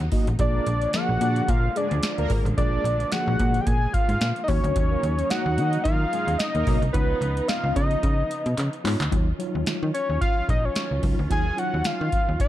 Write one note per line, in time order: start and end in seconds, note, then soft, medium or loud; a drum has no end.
0.00 0.09 D#2 medium
0.00 0.36 C#3 medium
0.00 0.36 F#3 medium
0.00 0.36 A#3 medium
0.00 0.36 D#4 loud
0.00 closed hi-hat soft
0.12 0.27 A#3 medium
0.12 0.27 D#4 medium
0.12 0.27 F#4 medium
0.12 0.27 D#5 medium
0.12 kick loud
0.12 open hi-hat medium
0.27 0.36 A1 loud
0.27 closed hi-hat medium
0.38 0.60 A#1 loud
0.38 4.45 D3 loud
0.38 4.45 F3 medium
0.38 4.45 G#3 medium
0.38 0.65 A#3 medium
0.38 6.90 A#3 medium
0.38 0.65 F4 medium
0.38 0.66 G#4 medium
0.38 0.66 D5 medium
0.38 0.97 D5 loud
0.38 kick loud
0.38 closed hi-hat medium
0.55 0.64 A#3 medium
0.55 0.64 A#4 medium
0.66 0.87 A#1 loud
0.66 closed hi-hat medium
0.82 0.91 C#4 medium
0.82 0.91 C#5 medium
0.82 closed hi-hat medium
0.93 1.47 F3 medium
0.93 1.46 A#3 medium
0.93 1.06 D4 medium
0.93 1.47 G#4 medium
0.93 1.47 A#4 medium
0.93 1.06 D5 loud
0.93 1.51 F#5 loud
0.93 snare loud
0.93 closed hi-hat medium
1.09 1.18 A#1 medium
1.21 1.41 A#2 loud
1.21 1.43 D4 loud
1.21 1.43 D5 loud
1.21 closed hi-hat medium
1.36 closed hi-hat soft
1.48 1.69 A#2 loud
1.48 1.60 A#3 medium
1.48 1.60 A#4 loud
1.48 1.78 F5 loud
1.48 kick loud
1.48 closed hi-hat loud
1.75 1.98 G#3 loud
1.75 1.97 G#4 loud
1.75 2.31 D5 medium
1.75 closed hi-hat medium
1.91 2.00 D2 loud
1.91 closed hi-hat soft
2.03 snare loud
2.03 closed hi-hat loud
2.18 2.27 D2 medium
2.18 2.40 A#3 loud
2.18 2.40 A#4 loud
2.18 closed hi-hat soft
2.30 2.42 G#1 medium
2.30 2.45 A#3 medium
2.30 2.45 F4 medium
2.30 2.45 G#4 medium
2.30 2.45 A#4 medium
2.30 kick loud
2.30 open hi-hat medium
2.45 2.54 A1 loud
2.45 closed hi-hat medium
2.57 2.78 A#1 loud
2.57 2.84 A#3 medium
2.57 2.84 F4 medium
2.57 2.84 G#4 medium
2.57 2.84 A#4 medium
2.57 3.13 D5 loud
2.57 kick loud
2.57 closed hi-hat medium
2.84 3.05 A#1 loud
2.84 closed hi-hat medium
3.00 closed hi-hat soft
3.12 3.65 F3 medium
3.12 3.65 A#3 medium
3.12 3.65 G#4 medium
3.12 3.65 D5 medium
3.12 3.62 F#5 loud
3.12 snare loud
3.12 closed hi-hat medium
3.28 3.36 A#1 loud
3.40 3.60 A#2 loud
3.40 kick medium
3.40 closed hi-hat medium
3.54 closed hi-hat medium
3.61 3.68 G5 medium
3.66 3.87 A#2 medium
3.66 3.95 G#5 loud
3.66 kick loud
3.66 closed hi-hat medium
3.93 4.42 F5 loud
3.93 kick medium
3.93 closed hi-hat medium
4.09 4.18 G#2 medium
4.09 closed hi-hat medium
4.21 4.33 A#2 medium
4.21 snare loud
4.21 closed hi-hat medium
4.36 closed hi-hat soft
4.44 4.50 D#5 medium
4.48 4.60 D#2 loud
4.48 9.08 C#3 medium
4.48 6.91 F#3 medium
4.48 5.15 A#3 medium
4.48 9.08 D#4 loud
4.48 5.15 D#4 medium
4.48 5.15 F#4 medium
4.48 5.32 C#5 loud
4.48 5.15 C#5 medium
4.48 kick medium
4.48 open hi-hat medium
4.64 4.73 D2 loud
4.64 closed hi-hat medium
4.76 4.96 D#2 loud
4.76 kick loud
4.76 closed hi-hat medium
4.91 5.01 A#3 medium
4.91 5.00 A#4 loud
5.03 5.23 D#2 loud
5.03 closed hi-hat medium
5.18 5.28 C#4 medium
5.18 5.28 C#5 medium
5.18 closed hi-hat medium
5.30 5.83 A#3 medium
5.30 5.83 D#4 medium
5.30 5.43 D#4 medium
5.30 5.83 F#4 medium
5.30 5.83 C#5 medium
5.30 5.43 D#5 loud
5.30 5.83 F#5 loud
5.30 snare loud
5.30 closed hi-hat medium
5.46 5.59 D#2 loud
5.57 5.78 D#3 loud
5.57 5.80 D#4 loud
5.57 5.80 D#5 loud
5.57 closed hi-hat medium
5.73 closed hi-hat soft
5.84 6.05 D#3 loud
5.84 5.97 A#3 medium
5.84 5.97 A#4 loud
5.84 6.40 F5 loud
5.84 kick loud
5.84 closed hi-hat loud
6.12 6.34 G#3 loud
6.12 6.34 G#4 loud
6.12 closed hi-hat medium
6.27 6.36 D#2 medium
6.27 closed hi-hat medium
6.38 6.81 D#5 loud
6.38 snare loud
6.38 closed hi-hat medium
6.54 6.64 D#2 medium
6.54 6.76 A#3 loud
6.54 6.76 A#4 loud
6.54 closed hi-hat soft
6.67 6.78 B1 loud
6.67 6.81 A#3 medium
6.67 6.81 D#4 medium
6.67 6.82 F#4 medium
6.67 6.82 C#5 medium
6.67 kick loud
6.67 open hi-hat medium
6.82 6.91 C2 medium
6.82 closed hi-hat medium
6.93 7.14 C#2 loud
6.93 9.10 F3 medium
6.93 7.20 B3 medium
6.93 9.10 B3 medium
6.93 7.20 D#4 medium
6.93 7.20 F4 medium
6.93 7.50 B4 loud
6.93 7.20 C#5 medium
6.93 kick loud
6.93 closed hi-hat medium
7.21 7.41 C#2 loud
7.21 closed hi-hat medium
7.37 closed hi-hat soft
7.48 8.01 B3 medium
7.48 8.01 D#4 medium
7.48 8.01 F4 medium
7.48 8.01 D#5 medium
7.48 7.75 F5 medium
7.48 snare loud
7.48 closed hi-hat medium
7.64 7.73 C#2 loud
7.76 7.96 C#3 medium
7.76 8.81 D#5 medium
7.76 kick medium
7.76 closed hi-hat medium
7.91 closed hi-hat soft
8.03 8.23 C#3 loud
8.03 kick loud
8.03 closed hi-hat medium
8.31 closed hi-hat medium
8.46 8.55 B2 loud
8.46 closed hi-hat medium
8.58 8.69 C#3 loud
8.58 clap medium
8.58 closed hi-hat loud
8.73 closed hi-hat soft
8.84 8.96 G#2 loud
8.84 8.99 B3 medium
8.84 8.99 D#4 medium
8.84 8.99 F4 medium
8.84 9.00 C#5 medium
8.84 clap loud
8.84 open hi-hat medium
9.00 9.09 D2 loud
9.00 clap loud
9.00 closed hi-hat medium
9.11 9.33 D#2 loud
9.11 12.48 D#3 medium
9.11 9.26 F#3 medium
9.11 12.48 F#3 medium
9.11 12.48 C#4 medium
9.11 9.26 D#4 medium
9.11 9.27 F4 medium
9.11 12.48 F4 medium
9.11 9.27 C#5 loud
9.11 kick loud
9.11 closed hi-hat medium
9.39 9.92 F#3 medium
9.39 9.92 D#4 medium
9.39 9.92 F4 medium
9.39 9.92 C#5 medium
9.39 closed hi-hat medium
9.55 9.64 D#2 medium
9.66 9.73 D#3 soft
9.66 snare loud
9.66 closed hi-hat medium
9.83 9.91 D#3 loud
9.94 10.19 C#5 medium
9.94 closed hi-hat medium
10.10 10.18 D#2 medium
10.21 10.47 F5 loud
10.21 kick loud
10.21 closed hi-hat medium
10.49 10.69 A#1 loud
10.49 10.66 D#5 medium
10.49 kick medium
10.49 closed hi-hat medium
10.65 11.04 C#5 medium
10.76 snare loud
10.76 closed hi-hat medium
10.91 11.00 C#2 medium
11.02 11.15 C#2 medium
11.02 11.17 F#3 medium
11.02 11.18 D#4 medium
11.02 11.18 F4 medium
11.02 11.18 C#5 medium
11.02 kick loud
11.02 open hi-hat medium
11.19 11.28 D2 medium
11.29 11.51 D#2 medium
11.29 11.45 F#3 medium
11.29 11.45 D#4 medium
11.29 11.45 F4 medium
11.29 11.45 C#5 medium
11.29 11.60 G#5 loud
11.29 kick medium
11.29 closed hi-hat medium
11.57 12.10 F#3 medium
11.57 12.10 D#4 medium
11.57 12.10 F4 medium
11.57 12.10 C#5 medium
11.57 11.88 F#5 loud
11.57 closed hi-hat medium
11.74 11.82 D#2 medium
11.84 11.92 D#3 soft
11.84 12.40 F5 loud
11.84 snare loud
11.84 closed hi-hat medium
12.01 12.10 D#3 loud
12.12 kick medium
12.12 closed hi-hat medium
12.29 12.37 D#2 medium
12.40 12.48 D#5 loud
12.40 kick loud
12.40 closed hi-hat medium